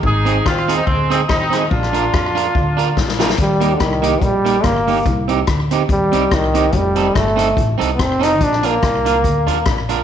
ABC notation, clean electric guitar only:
X:1
M:4/4
L:1/16
Q:"Swing" 1/4=144
K:Eb
V:1 name="Clean electric guitar"
z2 [CEA] z3 [CEA] z3 [CEA] z3 [CEA] z | z2 [DFB] z3 [DFB] z3 [DFB] z3 [DFB] z | z2 [B,EG] z3 [B,EG] z3 [B,EG] z3 [B,EG] z | z2 [CEG] z3 [CEG] z3 [CEG] z3 [CEG] z |
z2 [CE=A] z3 [CEA] z3 [CEA] z3 [CEA] z | z2 [DFB] z3 [DFB] z3 [DFB] z3 [DFB] z |]